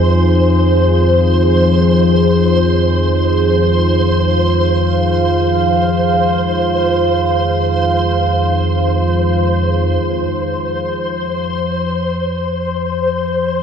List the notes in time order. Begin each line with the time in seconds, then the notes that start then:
Already playing: F2 F3 D#4 F4 G#4 C5
3.47 F5
10.01 F2 F3 C5